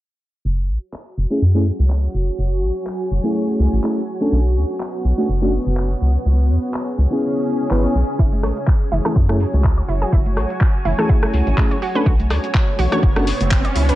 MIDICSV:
0, 0, Header, 1, 7, 480
1, 0, Start_track
1, 0, Key_signature, 3, "minor"
1, 0, Tempo, 483871
1, 445, Time_signature, 4, 2, 24, 8
1, 13841, End_track
2, 0, Start_track
2, 0, Title_t, "Synth arpeggio sound"
2, 0, Program_c, 0, 84
2, 8125, Note_on_c, 0, 64, 93
2, 8221, Note_off_c, 0, 64, 0
2, 8365, Note_on_c, 0, 73, 75
2, 8429, Note_off_c, 0, 73, 0
2, 8845, Note_on_c, 0, 64, 95
2, 8884, Note_off_c, 0, 64, 0
2, 8978, Note_on_c, 0, 69, 99
2, 9009, Note_off_c, 0, 69, 0
2, 9085, Note_on_c, 0, 64, 82
2, 9149, Note_off_c, 0, 64, 0
2, 9698, Note_on_c, 0, 73, 73
2, 9750, Note_off_c, 0, 73, 0
2, 9805, Note_on_c, 0, 64, 75
2, 9869, Note_off_c, 0, 64, 0
2, 9937, Note_on_c, 0, 68, 95
2, 9969, Note_off_c, 0, 68, 0
2, 10045, Note_on_c, 0, 64, 96
2, 10141, Note_off_c, 0, 64, 0
2, 10285, Note_on_c, 0, 73, 71
2, 10349, Note_off_c, 0, 73, 0
2, 10765, Note_on_c, 0, 64, 101
2, 10804, Note_off_c, 0, 64, 0
2, 10898, Note_on_c, 0, 69, 98
2, 10929, Note_off_c, 0, 69, 0
2, 11006, Note_on_c, 0, 64, 80
2, 11069, Note_off_c, 0, 64, 0
2, 11618, Note_on_c, 0, 73, 73
2, 11670, Note_off_c, 0, 73, 0
2, 11725, Note_on_c, 0, 66, 77
2, 11789, Note_off_c, 0, 66, 0
2, 11857, Note_on_c, 0, 71, 92
2, 11889, Note_off_c, 0, 71, 0
2, 11965, Note_on_c, 0, 66, 93
2, 12061, Note_off_c, 0, 66, 0
2, 12205, Note_on_c, 0, 74, 74
2, 12269, Note_off_c, 0, 74, 0
2, 12685, Note_on_c, 0, 66, 98
2, 12723, Note_off_c, 0, 66, 0
2, 12818, Note_on_c, 0, 73, 96
2, 12849, Note_off_c, 0, 73, 0
2, 12925, Note_on_c, 0, 66, 82
2, 12989, Note_off_c, 0, 66, 0
2, 13538, Note_on_c, 0, 74, 74
2, 13590, Note_off_c, 0, 74, 0
2, 13645, Note_on_c, 0, 64, 80
2, 13709, Note_off_c, 0, 64, 0
2, 13778, Note_on_c, 0, 71, 95
2, 13809, Note_off_c, 0, 71, 0
2, 13841, End_track
3, 0, Start_track
3, 0, Title_t, "Ambient pad"
3, 0, Program_c, 1, 92
3, 446, Note_on_c, 1, 66, 75
3, 713, Note_on_c, 1, 73, 73
3, 1793, Note_on_c, 1, 80, 87
3, 4047, Note_on_c, 1, 59, 72
3, 4819, Note_off_c, 1, 80, 0
3, 5964, Note_on_c, 1, 61, 88
3, 6168, Note_on_c, 1, 68, 75
3, 6840, Note_off_c, 1, 59, 0
3, 6840, Note_off_c, 1, 66, 0
3, 8125, Note_on_c, 1, 66, 88
3, 8953, Note_on_c, 1, 80, 84
3, 9269, Note_off_c, 1, 61, 0
3, 9520, Note_off_c, 1, 68, 0
3, 11724, Note_on_c, 1, 59, 82
3, 12498, Note_off_c, 1, 80, 0
3, 13841, Note_off_c, 1, 59, 0
3, 13841, Note_off_c, 1, 66, 0
3, 13841, Note_off_c, 1, 73, 0
3, 13841, End_track
4, 0, Start_track
4, 0, Title_t, "FM electric piano"
4, 0, Program_c, 2, 5
4, 1293, Note_on_c, 2, 57, 69
4, 1296, Note_on_c, 2, 61, 67
4, 1300, Note_on_c, 2, 64, 66
4, 1303, Note_on_c, 2, 68, 79
4, 1388, Note_off_c, 2, 57, 0
4, 1390, Note_off_c, 2, 61, 0
4, 1392, Note_off_c, 2, 64, 0
4, 1393, Note_off_c, 2, 68, 0
4, 1533, Note_on_c, 2, 57, 87
4, 1537, Note_on_c, 2, 61, 78
4, 1540, Note_on_c, 2, 64, 81
4, 1543, Note_on_c, 2, 68, 92
4, 1628, Note_off_c, 2, 57, 0
4, 1630, Note_off_c, 2, 61, 0
4, 1632, Note_off_c, 2, 64, 0
4, 1633, Note_off_c, 2, 68, 0
4, 3208, Note_on_c, 2, 57, 69
4, 3214, Note_on_c, 2, 61, 63
4, 3221, Note_on_c, 2, 64, 63
4, 3227, Note_on_c, 2, 68, 76
4, 3775, Note_off_c, 2, 57, 0
4, 3778, Note_off_c, 2, 61, 0
4, 3781, Note_off_c, 2, 64, 0
4, 3784, Note_off_c, 2, 68, 0
4, 3800, Note_on_c, 2, 57, 68
4, 3803, Note_on_c, 2, 61, 65
4, 3807, Note_on_c, 2, 64, 60
4, 3810, Note_on_c, 2, 68, 76
4, 3976, Note_off_c, 2, 57, 0
4, 3978, Note_off_c, 2, 61, 0
4, 3979, Note_off_c, 2, 64, 0
4, 3981, Note_off_c, 2, 68, 0
4, 4173, Note_on_c, 2, 57, 75
4, 4176, Note_on_c, 2, 61, 67
4, 4180, Note_on_c, 2, 62, 73
4, 4183, Note_on_c, 2, 69, 90
4, 4333, Note_off_c, 2, 57, 0
4, 4335, Note_off_c, 2, 61, 0
4, 4337, Note_off_c, 2, 62, 0
4, 4338, Note_off_c, 2, 69, 0
4, 5133, Note_on_c, 2, 57, 73
4, 5136, Note_on_c, 2, 61, 66
4, 5139, Note_on_c, 2, 62, 69
4, 5143, Note_on_c, 2, 66, 83
4, 5228, Note_off_c, 2, 57, 0
4, 5230, Note_off_c, 2, 61, 0
4, 5231, Note_off_c, 2, 62, 0
4, 5233, Note_off_c, 2, 66, 0
4, 5373, Note_on_c, 2, 57, 83
4, 5376, Note_on_c, 2, 61, 80
4, 5379, Note_on_c, 2, 62, 82
4, 5383, Note_on_c, 2, 66, 94
4, 5468, Note_off_c, 2, 57, 0
4, 5470, Note_off_c, 2, 61, 0
4, 5471, Note_off_c, 2, 62, 0
4, 5473, Note_off_c, 2, 66, 0
4, 7048, Note_on_c, 2, 59, 69
4, 7055, Note_on_c, 2, 61, 63
4, 7061, Note_on_c, 2, 64, 63
4, 7068, Note_on_c, 2, 68, 72
4, 7615, Note_off_c, 2, 59, 0
4, 7618, Note_off_c, 2, 61, 0
4, 7622, Note_off_c, 2, 64, 0
4, 7625, Note_off_c, 2, 68, 0
4, 7641, Note_on_c, 2, 59, 68
4, 7644, Note_on_c, 2, 61, 63
4, 7648, Note_on_c, 2, 64, 62
4, 7651, Note_on_c, 2, 71, 77
4, 7756, Note_off_c, 2, 59, 0
4, 7757, Note_off_c, 2, 61, 0
4, 7759, Note_off_c, 2, 64, 0
4, 7761, Note_off_c, 2, 71, 0
4, 7773, Note_on_c, 2, 59, 70
4, 7776, Note_on_c, 2, 61, 66
4, 7779, Note_on_c, 2, 64, 65
4, 7782, Note_on_c, 2, 73, 77
4, 7868, Note_off_c, 2, 59, 0
4, 7870, Note_off_c, 2, 61, 0
4, 7871, Note_off_c, 2, 64, 0
4, 7873, Note_off_c, 2, 73, 0
4, 8972, Note_on_c, 2, 57, 77
4, 8976, Note_on_c, 2, 61, 70
4, 8979, Note_on_c, 2, 64, 68
4, 8982, Note_on_c, 2, 68, 82
4, 9068, Note_off_c, 2, 57, 0
4, 9069, Note_off_c, 2, 61, 0
4, 9071, Note_off_c, 2, 64, 0
4, 9073, Note_off_c, 2, 68, 0
4, 9213, Note_on_c, 2, 57, 88
4, 9216, Note_on_c, 2, 61, 81
4, 9219, Note_on_c, 2, 64, 83
4, 9222, Note_on_c, 2, 68, 100
4, 9308, Note_off_c, 2, 57, 0
4, 9310, Note_off_c, 2, 61, 0
4, 9311, Note_off_c, 2, 64, 0
4, 9313, Note_off_c, 2, 68, 0
4, 10888, Note_on_c, 2, 57, 70
4, 10894, Note_on_c, 2, 61, 65
4, 10901, Note_on_c, 2, 64, 62
4, 10908, Note_on_c, 2, 68, 79
4, 11455, Note_off_c, 2, 57, 0
4, 11458, Note_off_c, 2, 61, 0
4, 11461, Note_off_c, 2, 64, 0
4, 11465, Note_off_c, 2, 68, 0
4, 11481, Note_on_c, 2, 57, 68
4, 11484, Note_on_c, 2, 61, 62
4, 11487, Note_on_c, 2, 64, 62
4, 11490, Note_on_c, 2, 68, 78
4, 11656, Note_off_c, 2, 57, 0
4, 11658, Note_off_c, 2, 61, 0
4, 11660, Note_off_c, 2, 64, 0
4, 11661, Note_off_c, 2, 68, 0
4, 11853, Note_on_c, 2, 57, 83
4, 11856, Note_on_c, 2, 61, 75
4, 11860, Note_on_c, 2, 62, 76
4, 11863, Note_on_c, 2, 69, 88
4, 12013, Note_off_c, 2, 57, 0
4, 12015, Note_off_c, 2, 61, 0
4, 12017, Note_off_c, 2, 62, 0
4, 12018, Note_off_c, 2, 69, 0
4, 12813, Note_on_c, 2, 57, 76
4, 12817, Note_on_c, 2, 61, 73
4, 12820, Note_on_c, 2, 62, 73
4, 12823, Note_on_c, 2, 66, 86
4, 12908, Note_off_c, 2, 57, 0
4, 12910, Note_off_c, 2, 61, 0
4, 12911, Note_off_c, 2, 62, 0
4, 12913, Note_off_c, 2, 66, 0
4, 13053, Note_on_c, 2, 57, 93
4, 13056, Note_on_c, 2, 61, 83
4, 13060, Note_on_c, 2, 62, 80
4, 13063, Note_on_c, 2, 66, 98
4, 13148, Note_off_c, 2, 57, 0
4, 13150, Note_off_c, 2, 61, 0
4, 13152, Note_off_c, 2, 62, 0
4, 13153, Note_off_c, 2, 66, 0
4, 13841, End_track
5, 0, Start_track
5, 0, Title_t, "Analog synth bass"
5, 0, Program_c, 3, 38
5, 445, Note_on_c, 3, 30, 81
5, 686, Note_on_c, 3, 33, 77
5, 701, Note_off_c, 3, 30, 0
5, 766, Note_off_c, 3, 33, 0
5, 1165, Note_on_c, 3, 30, 86
5, 1245, Note_off_c, 3, 30, 0
5, 1405, Note_on_c, 3, 42, 81
5, 1694, Note_off_c, 3, 42, 0
5, 1778, Note_on_c, 3, 37, 90
5, 2057, Note_off_c, 3, 37, 0
5, 2125, Note_on_c, 3, 30, 81
5, 2280, Note_off_c, 3, 30, 0
5, 2365, Note_on_c, 3, 30, 82
5, 2605, Note_on_c, 3, 33, 85
5, 2620, Note_off_c, 3, 30, 0
5, 2685, Note_off_c, 3, 33, 0
5, 3085, Note_on_c, 3, 30, 83
5, 3165, Note_off_c, 3, 30, 0
5, 3565, Note_on_c, 3, 37, 85
5, 3645, Note_off_c, 3, 37, 0
5, 3698, Note_on_c, 3, 33, 80
5, 3763, Note_off_c, 3, 33, 0
5, 4285, Note_on_c, 3, 35, 93
5, 4525, Note_on_c, 3, 38, 81
5, 4540, Note_off_c, 3, 35, 0
5, 4605, Note_off_c, 3, 38, 0
5, 5005, Note_on_c, 3, 35, 84
5, 5085, Note_off_c, 3, 35, 0
5, 5246, Note_on_c, 3, 30, 79
5, 5534, Note_off_c, 3, 30, 0
5, 5618, Note_on_c, 3, 30, 93
5, 5897, Note_off_c, 3, 30, 0
5, 5966, Note_on_c, 3, 37, 76
5, 6120, Note_off_c, 3, 37, 0
5, 6206, Note_on_c, 3, 37, 88
5, 6446, Note_on_c, 3, 40, 83
5, 6460, Note_off_c, 3, 37, 0
5, 6525, Note_off_c, 3, 40, 0
5, 6925, Note_on_c, 3, 37, 87
5, 7005, Note_off_c, 3, 37, 0
5, 7645, Note_on_c, 3, 32, 87
5, 7800, Note_off_c, 3, 32, 0
5, 7886, Note_on_c, 3, 35, 91
5, 7965, Note_off_c, 3, 35, 0
5, 8126, Note_on_c, 3, 30, 87
5, 8365, Note_on_c, 3, 33, 81
5, 8380, Note_off_c, 3, 30, 0
5, 8445, Note_off_c, 3, 33, 0
5, 8845, Note_on_c, 3, 30, 80
5, 8925, Note_off_c, 3, 30, 0
5, 9085, Note_on_c, 3, 42, 81
5, 9374, Note_off_c, 3, 42, 0
5, 9458, Note_on_c, 3, 37, 91
5, 9737, Note_off_c, 3, 37, 0
5, 9805, Note_on_c, 3, 30, 79
5, 9960, Note_off_c, 3, 30, 0
5, 10045, Note_on_c, 3, 30, 93
5, 10284, Note_on_c, 3, 33, 84
5, 10299, Note_off_c, 3, 30, 0
5, 10365, Note_off_c, 3, 33, 0
5, 10765, Note_on_c, 3, 30, 86
5, 10845, Note_off_c, 3, 30, 0
5, 11245, Note_on_c, 3, 37, 82
5, 11325, Note_off_c, 3, 37, 0
5, 11377, Note_on_c, 3, 33, 81
5, 11443, Note_off_c, 3, 33, 0
5, 11966, Note_on_c, 3, 35, 92
5, 12205, Note_on_c, 3, 38, 84
5, 12220, Note_off_c, 3, 35, 0
5, 12285, Note_off_c, 3, 38, 0
5, 12685, Note_on_c, 3, 35, 90
5, 12765, Note_off_c, 3, 35, 0
5, 12926, Note_on_c, 3, 30, 82
5, 13214, Note_off_c, 3, 30, 0
5, 13298, Note_on_c, 3, 30, 94
5, 13577, Note_off_c, 3, 30, 0
5, 13645, Note_on_c, 3, 37, 82
5, 13800, Note_off_c, 3, 37, 0
5, 13841, End_track
6, 0, Start_track
6, 0, Title_t, "Riser"
6, 0, Program_c, 4, 103
6, 11966, Note_on_c, 4, 60, 71
6, 13841, Note_off_c, 4, 60, 0
6, 13841, End_track
7, 0, Start_track
7, 0, Title_t, "Drums"
7, 923, Note_on_c, 9, 39, 112
7, 1022, Note_off_c, 9, 39, 0
7, 1883, Note_on_c, 9, 39, 105
7, 1982, Note_off_c, 9, 39, 0
7, 2843, Note_on_c, 9, 39, 113
7, 2942, Note_off_c, 9, 39, 0
7, 3803, Note_on_c, 9, 39, 112
7, 3902, Note_off_c, 9, 39, 0
7, 4763, Note_on_c, 9, 39, 103
7, 4862, Note_off_c, 9, 39, 0
7, 5723, Note_on_c, 9, 39, 110
7, 5822, Note_off_c, 9, 39, 0
7, 6683, Note_on_c, 9, 39, 106
7, 6783, Note_off_c, 9, 39, 0
7, 7643, Note_on_c, 9, 39, 103
7, 7742, Note_off_c, 9, 39, 0
7, 8126, Note_on_c, 9, 36, 106
7, 8225, Note_off_c, 9, 36, 0
7, 8258, Note_on_c, 9, 42, 46
7, 8258, Note_on_c, 9, 63, 87
7, 8357, Note_off_c, 9, 42, 0
7, 8357, Note_off_c, 9, 63, 0
7, 8365, Note_on_c, 9, 37, 66
7, 8365, Note_on_c, 9, 46, 96
7, 8465, Note_off_c, 9, 37, 0
7, 8465, Note_off_c, 9, 46, 0
7, 8498, Note_on_c, 9, 42, 59
7, 8597, Note_off_c, 9, 42, 0
7, 8603, Note_on_c, 9, 39, 107
7, 8605, Note_on_c, 9, 36, 111
7, 8702, Note_off_c, 9, 39, 0
7, 8705, Note_off_c, 9, 36, 0
7, 8845, Note_on_c, 9, 46, 82
7, 8845, Note_on_c, 9, 63, 59
7, 8845, Note_on_c, 9, 64, 72
7, 8945, Note_off_c, 9, 46, 0
7, 8945, Note_off_c, 9, 63, 0
7, 8945, Note_off_c, 9, 64, 0
7, 8978, Note_on_c, 9, 37, 66
7, 8978, Note_on_c, 9, 42, 61
7, 8978, Note_on_c, 9, 64, 81
7, 9077, Note_off_c, 9, 37, 0
7, 9077, Note_off_c, 9, 42, 0
7, 9077, Note_off_c, 9, 64, 0
7, 9085, Note_on_c, 9, 36, 102
7, 9184, Note_off_c, 9, 36, 0
7, 9218, Note_on_c, 9, 37, 77
7, 9317, Note_off_c, 9, 37, 0
7, 9325, Note_on_c, 9, 46, 96
7, 9424, Note_off_c, 9, 46, 0
7, 9457, Note_on_c, 9, 42, 58
7, 9458, Note_on_c, 9, 63, 84
7, 9557, Note_off_c, 9, 42, 0
7, 9557, Note_off_c, 9, 63, 0
7, 9563, Note_on_c, 9, 39, 105
7, 9565, Note_on_c, 9, 36, 100
7, 9662, Note_off_c, 9, 39, 0
7, 9664, Note_off_c, 9, 36, 0
7, 9698, Note_on_c, 9, 42, 46
7, 9797, Note_off_c, 9, 42, 0
7, 9805, Note_on_c, 9, 46, 88
7, 9905, Note_off_c, 9, 46, 0
7, 9938, Note_on_c, 9, 42, 54
7, 10037, Note_off_c, 9, 42, 0
7, 10045, Note_on_c, 9, 36, 102
7, 10144, Note_off_c, 9, 36, 0
7, 10178, Note_on_c, 9, 42, 47
7, 10178, Note_on_c, 9, 63, 78
7, 10277, Note_off_c, 9, 42, 0
7, 10277, Note_off_c, 9, 63, 0
7, 10285, Note_on_c, 9, 37, 60
7, 10285, Note_on_c, 9, 46, 91
7, 10384, Note_off_c, 9, 37, 0
7, 10384, Note_off_c, 9, 46, 0
7, 10418, Note_on_c, 9, 42, 62
7, 10517, Note_off_c, 9, 42, 0
7, 10522, Note_on_c, 9, 39, 106
7, 10525, Note_on_c, 9, 36, 107
7, 10622, Note_off_c, 9, 39, 0
7, 10624, Note_off_c, 9, 36, 0
7, 10765, Note_on_c, 9, 46, 83
7, 10766, Note_on_c, 9, 63, 63
7, 10766, Note_on_c, 9, 64, 70
7, 10864, Note_off_c, 9, 46, 0
7, 10865, Note_off_c, 9, 63, 0
7, 10865, Note_off_c, 9, 64, 0
7, 10898, Note_on_c, 9, 37, 66
7, 10898, Note_on_c, 9, 42, 61
7, 10898, Note_on_c, 9, 64, 85
7, 10997, Note_off_c, 9, 37, 0
7, 10997, Note_off_c, 9, 42, 0
7, 10997, Note_off_c, 9, 64, 0
7, 11005, Note_on_c, 9, 36, 98
7, 11104, Note_off_c, 9, 36, 0
7, 11138, Note_on_c, 9, 37, 80
7, 11237, Note_off_c, 9, 37, 0
7, 11245, Note_on_c, 9, 46, 92
7, 11344, Note_off_c, 9, 46, 0
7, 11378, Note_on_c, 9, 42, 61
7, 11378, Note_on_c, 9, 63, 81
7, 11477, Note_off_c, 9, 42, 0
7, 11477, Note_off_c, 9, 63, 0
7, 11483, Note_on_c, 9, 39, 104
7, 11485, Note_on_c, 9, 36, 99
7, 11582, Note_off_c, 9, 39, 0
7, 11584, Note_off_c, 9, 36, 0
7, 11618, Note_on_c, 9, 42, 50
7, 11717, Note_off_c, 9, 42, 0
7, 11726, Note_on_c, 9, 46, 82
7, 11825, Note_off_c, 9, 46, 0
7, 11858, Note_on_c, 9, 42, 57
7, 11958, Note_off_c, 9, 42, 0
7, 11965, Note_on_c, 9, 36, 104
7, 12065, Note_off_c, 9, 36, 0
7, 12098, Note_on_c, 9, 42, 50
7, 12098, Note_on_c, 9, 63, 82
7, 12197, Note_off_c, 9, 63, 0
7, 12198, Note_off_c, 9, 42, 0
7, 12206, Note_on_c, 9, 37, 63
7, 12206, Note_on_c, 9, 46, 95
7, 12305, Note_off_c, 9, 37, 0
7, 12305, Note_off_c, 9, 46, 0
7, 12338, Note_on_c, 9, 42, 66
7, 12437, Note_off_c, 9, 42, 0
7, 12443, Note_on_c, 9, 39, 110
7, 12446, Note_on_c, 9, 36, 104
7, 12542, Note_off_c, 9, 39, 0
7, 12545, Note_off_c, 9, 36, 0
7, 12685, Note_on_c, 9, 46, 83
7, 12686, Note_on_c, 9, 63, 63
7, 12686, Note_on_c, 9, 64, 77
7, 12785, Note_off_c, 9, 46, 0
7, 12785, Note_off_c, 9, 63, 0
7, 12785, Note_off_c, 9, 64, 0
7, 12818, Note_on_c, 9, 37, 63
7, 12818, Note_on_c, 9, 42, 64
7, 12818, Note_on_c, 9, 64, 82
7, 12917, Note_off_c, 9, 37, 0
7, 12917, Note_off_c, 9, 42, 0
7, 12917, Note_off_c, 9, 64, 0
7, 12926, Note_on_c, 9, 36, 97
7, 13025, Note_off_c, 9, 36, 0
7, 13058, Note_on_c, 9, 37, 75
7, 13157, Note_off_c, 9, 37, 0
7, 13166, Note_on_c, 9, 46, 91
7, 13265, Note_off_c, 9, 46, 0
7, 13298, Note_on_c, 9, 63, 81
7, 13299, Note_on_c, 9, 42, 66
7, 13397, Note_off_c, 9, 63, 0
7, 13398, Note_off_c, 9, 42, 0
7, 13404, Note_on_c, 9, 39, 108
7, 13406, Note_on_c, 9, 36, 96
7, 13503, Note_off_c, 9, 39, 0
7, 13505, Note_off_c, 9, 36, 0
7, 13538, Note_on_c, 9, 42, 53
7, 13637, Note_off_c, 9, 42, 0
7, 13645, Note_on_c, 9, 46, 86
7, 13745, Note_off_c, 9, 46, 0
7, 13778, Note_on_c, 9, 42, 64
7, 13841, Note_off_c, 9, 42, 0
7, 13841, End_track
0, 0, End_of_file